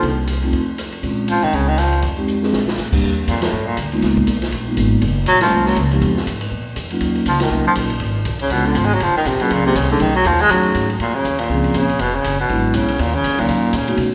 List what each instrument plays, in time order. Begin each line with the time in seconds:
0.03 upright bass C2, kick, ride
0.27 hi-hat pedal, ride
0.42 vibraphone A3 C4 D#4 F4, ride
0.53 upright bass F2, kick, ride
0.78 cross-stick, hi-hat pedal, ride
0.92 ride
1.03 upright bass A#1, vibraphone G#3 C4 C#4 F4, kick, ride
1.28 baritone saxophone F3, hi-hat pedal, ride
1.42 upright bass B1, baritone saxophone D#3, ride
1.53 upright bass C#2, baritone saxophone C#3, kick, ride
1.68 baritone saxophone D#3
1.78 baritone saxophone F3, cross-stick, hi-hat pedal, ride
1.93 ride
2.02 upright bass F2, kick, ride
2.17 vibraphone G#3 C4 D#4 G4
2.27 hi-hat pedal
2.42 vibraphone G#3 C4 D4 G#4, snare
2.53 upright bass A#1, snare
2.68 snare
2.78 upright bass A#2, snare, hi-hat pedal
2.92 vibraphone G3 A#3 D4 G4, kick, crash
3.03 upright bass D#2, kick
3.28 upright bass F2, baritone saxophone A#2, kick, hi-hat pedal, ride
3.42 baritone saxophone A2, snare, ride
3.53 upright bass G2
3.67 baritone saxophone A#2
3.77 upright bass D2, kick, hi-hat pedal, ride
3.92 vibraphone G#3 A#3 B3 D#4 F4, ride
4.02 upright bass C#2, kick, snare, ride
4.17 kick
4.27 upright bass B1, kick, hi-hat pedal, ride
4.42 snare, ride
4.52 upright bass A#1, kick, ride
4.68 vibraphone G#3 A#3 B3 D#4 F4
4.77 upright bass G#1, kick, hi-hat pedal, ride
5.02 upright bass F#1, kick, ride
5.26 upright bass A#1, baritone saxophone F#3, kick, hi-hat pedal, ride
5.41 baritone saxophone F3, vibraphone F#3 G#3 A#3 C#4 F4, snare, ride
5.52 upright bass C2
5.66 baritone saxophone F#3, snare
5.76 upright bass C#2, kick, hi-hat pedal, ride
5.91 vibraphone F3 G#3 B3 D#4 G4, ride
6.01 upright bass F2, kick, ride
6.17 snare
6.26 upright bass G#2, kick, hi-hat pedal, ride
6.41 ride
6.51 upright bass A#2, kick
6.76 upright bass F2, kick, hi-hat pedal, ride
6.90 vibraphone F#3 A#3 C#4 D#4 F4, ride
7.01 upright bass D#2, kick, ride
7.15 ride
7.26 upright bass C#2, baritone saxophone F3, kick, hi-hat pedal, ride
7.40 baritone saxophone D#3, snare, ride
7.51 upright bass C2, vibraphone F#3 A#3 C#4 D#4 F4
7.66 baritone saxophone F3, muted upright bass stroke
7.75 upright bass A#1, kick, hi-hat pedal, ride
7.90 ride
8.00 upright bass G#1, kick, ride
8.25 upright bass B1, kick, hi-hat pedal, ride
8.39 baritone saxophone C#3, ride
8.50 upright bass C#2, baritone saxophone B2, vibraphone G#3 B3 C#4 D4 F4, kick, ride
8.66 baritone saxophone D3
8.75 upright bass G#1, baritone saxophone F3, kick, hi-hat pedal, ride
8.85 baritone saxophone G#3
8.94 baritone saxophone F#3
9.00 upright bass F#1, baritone saxophone F3, kick, ride
9.15 baritone saxophone D#3, muted upright bass stroke
9.25 upright bass A#1, baritone saxophone C3, kick, hi-hat pedal, ride
9.40 baritone saxophone B2, vibraphone F#3 A#3 C#4 F4 G#4, muted upright bass stroke, ride
9.51 upright bass C#2, baritone saxophone A#2, kick, ride
9.66 baritone saxophone C3
9.75 upright bass C2, baritone saxophone C#3, kick, hi-hat pedal, ride
9.89 baritone saxophone D3, vibraphone F#3 A3 C#4 D#4 G#4, ride
10.00 upright bass B1, baritone saxophone D#3, kick, ride
10.15 baritone saxophone F#3, ride
10.24 upright bass D#2, baritone saxophone F3, kick, hi-hat pedal, ride
10.39 baritone saxophone G#3, ride
10.49 upright bass F#2, vibraphone F#3 A3 C#4 D#4 G#4, baritone saxophone F#3, kick, ride
10.74 upright bass G#2, kick, hi-hat pedal, ride
10.90 ride
11.00 upright bass F2, baritone saxophone A#2, kick, ride
11.15 baritone saxophone C#3
11.24 upright bass D#2, kick, hi-hat pedal, ride
11.39 baritone saxophone A#2, ride
11.49 upright bass C#2, vibraphone F3 A#3 C4 C#4 G#4, kick
11.64 ride
11.74 upright bass A#1, baritone saxophone C#3, kick, hi-hat pedal, ride
11.89 ride
11.99 upright bass F1, baritone saxophone B2, kick, ride
12.15 baritone saxophone C#3
12.24 upright bass F#1, kick, hi-hat pedal, ride
12.40 baritone saxophone B2
12.49 upright bass G#1, vibraphone F#3 G#3 B3 D4 E4, kick, ride
12.74 upright bass B1, baritone saxophone C#3, kick, hi-hat pedal, ride
12.88 ride
12.99 upright bass D#2, baritone saxophone A#2, kick, ride
13.15 baritone saxophone C#3
13.24 upright bass F2, kick, hi-hat pedal, ride
13.32 upright bass D#2
13.38 upright bass C#2, baritone saxophone A#2, vibraphone F#3 A#3 C#4 D#4 F4, ride
13.49 upright bass F#2, kick, ride
13.73 upright bass A#2, baritone saxophone C#3, kick, hi-hat pedal, ride
13.88 vibraphone A3 B3 C#4 D#4 F#4, ride
13.97 upright bass B2, kick, ride